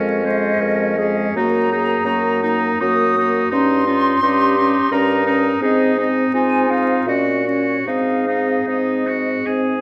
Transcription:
Already playing: F2 G#3 C#4 A#4 D#5
0.25 G#3 C#4 C5
0.60 F2 A#4
0.98 G#3 C#4 G#4
1.35 F#2 A#3 D#4 F#4 A#5
1.71 A#3 D#4 G#4
2.05 F#2 A#3 D#4 F#4
2.43 A#3 D#4
2.80 F#2 A#3 D#4 F#4 D#6
3.18 A#3 D#4
3.51 G2 C#4 D#4 C6
3.87 C#4 D#4 F4
4.22 G2 C#4 D#4 G4
4.58 C#4 D#4
4.91 G2 C#4 D#4 A#4 A#5
5.26 C#4 D#4
5.60 G#2 C4 D#4 G#4 D#5
5.97 C4 D#4
6.33 G#2 C4 D#4 F4 G#5
6.70 C4 D#4 F5
7.07 A#2 C#4 F#4 D#5
7.46 C#4 F#4 C#5
7.87 G#2 C4 D#4 G#4 F5
8.27 C4 D#4
8.67 G#2 C4 D#4 D#5
9.07 C4 F#4
9.46 G#2 C4 G#4

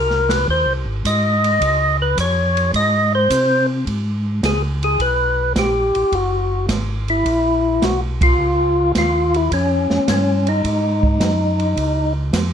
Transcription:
Already playing: C2 A#4
0.10 snare
0.29 B4, snare, ride
0.48 D#2 C5, kick
0.66 C2
0.85 G#1
1.04 G#2 D#5, kick, hi-hat pedal, ride
1.44 ride
1.61 C#2, kick, ride
2.02 B4
2.17 F2 C#5, kick, hi-hat pedal, ride
2.57 ride
2.73 G#2 D#5, kick, ride
3.15 C5
3.30 C3, kick, hi-hat pedal, ride
3.86 G#2, kick, ride
4.43 C#2 G#4, kick, snare, hi-hat pedal, ride
4.83 G#4, ride
4.99 B1 B4, kick, ride
5.55 A#1 G4, kick, snare, hi-hat pedal, ride
5.95 A#1, ride
6.12 F#1 F#4, kick, ride
6.68 G#1, kick, snare, hi-hat pedal, ride
7.08 E4, ride
7.25 A#1, kick, ride
7.82 B1 F#4, kick, snare, hi-hat pedal, ride
8.21 F4, kick, ride
8.38 C#2
8.95 D#2 F4, kick, snare, hi-hat pedal, ride
9.34 E4, ride
9.51 F2 C#4, kick, ride
9.90 F2, snare
10.08 G2 C#4, kick, snare, hi-hat pedal, ride
10.47 D#4, ride
10.64 G#2, kick, ride
11.03 kick
11.20 F#2, kick, snare, hi-hat pedal, ride
11.60 ride
11.76 C#2, kick, ride
12.33 F2, kick, snare, hi-hat pedal, ride

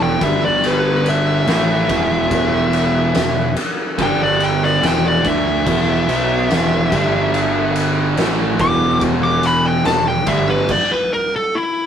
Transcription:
Already playing: E1 E2 B2 E3
0.03 G5
0.21 G1 G2 D3 G3 E5, kick, ride
0.45 D5
0.64 B4, ride
1.06 E5, ride
1.46 A1 A2 E3 A3, snare, ride
1.88 E1 E2 B2 E3, kick, ride
2.31 kick, ride
2.73 ride
3.15 E1 E2 B2, snare, ride
3.57 ride
3.98 G1 G2 D3 G3, kick, ride
4.02 G5
4.23 D5
4.40 G5, ride
4.63 D5, snare
4.82 E1 E2 B2 E3 G5, snare, ride
5.07 D5
5.24 D2 D3 A3 D4 E5, kick, ride
5.66 E1 E2 B2 E3, kick, crash
6.07 B1 B2 F#3 B3, ride
6.50 E1 E2 B2 E3, snare, ride
6.92 G1 G2 D3 G3, kick, ride
7.34 ride
7.76 ride
8.16 A1 A2 E3 A3, snare, ride
8.59 E1 E2 B2 E3 D6, kick, ride
9.01 kick, ride
9.24 D6
9.43 B5, ride
9.66 G5
9.85 E1 E2 B2 A5, snare, ride
10.08 G5
10.26 G1 G2 D3 G3 E5, kick, ride
10.50 B4
10.69 D5, kick, crash
10.92 B4
11.13 A#4
11.36 A4
11.55 E4

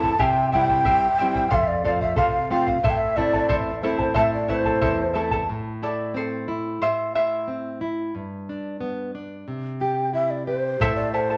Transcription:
Already playing: E2 A3 C4 E4 A5
0.03 E4 A4 A5, bombo low
0.19 C3 E4 G4 C5 E5 G5 G#5, bombo low
0.52 G3 C4 E4 C5 E5 G5, bombo low
0.69 E4 C5 G5, bombo low
0.84 G2 E4 G4 C5 E5 G5, bombo low
1.18 G3 C4 E4 C5 E5 G5
1.34 E4 C5 G5, bombo low
1.50 F2 A4 C5 E5 F5, bombo low
1.68 D5
1.84 A3 C4 F4 A4 C5 D5 F5, bombo low
2.00 C5 E5 F5, bombo low
2.16 C3 A4 C5 F5, bombo low
2.50 A3 C4 F4 A4 C5 F5 G5
2.66 C5 F5, bombo low
2.83 A2 E4 A4 C5 E5 A5, bombo low
2.90 G5
2.97 E5
3.16 A3 C4 E4 A4 D5 E5 A5, bombo low
3.33 E4 A4 A5, bombo low
3.49 E2 E4 A4 C5 E5 A5, bombo low
3.82 A3 C4 E4 A4 C5 E5 A5
3.99 E4 A4 A5, bombo low
4.14 A2 E4 A4 C5 E5 A5, bombo low
4.33 D5
4.48 A3 C4 E4 A4 C5 E5 A5, bombo low
4.65 E4 A4 A5, bombo low
4.81 E2 E4 A4 C5 E5 A5, bombo low
5.14 A3 C4 E4 A4 E5 A5
5.31 E4 A4 A5, bombo low
5.49 A2
5.83 E4 A4 D5
6.14 C4 A4 C5
6.48 E4
6.82 A2 C5 E5
7.15 E4 C5 E5
7.48 C4
7.81 E4
8.15 G2
8.49 D4
8.81 B3
9.15 D4
9.48 C3
9.81 G4 G5
10.13 E4 E5
10.30 D5
10.46 G4 C5
10.80 A2 E4 A4 C5 E5 A5, bombo low
10.96 D5
11.13 E4 A4 C5 E5 A5
11.30 E4 A4 A5

